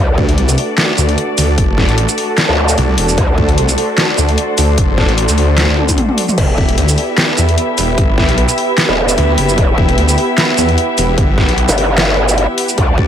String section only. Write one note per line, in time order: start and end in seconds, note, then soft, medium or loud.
0.00 6.34 A3 medium
0.00 6.34 D4 medium
0.00 6.34 F#4 medium
0.00 3.15 D5 medium
3.18 6.35 C5 medium
6.38 12.74 B3 medium
6.38 12.74 E4 medium
6.38 12.74 G4 medium
6.38 12.74 E5 medium
12.78 13.07 A3 medium
12.78 13.07 D4 medium
12.78 13.07 F#4 medium
12.78 13.07 D5 medium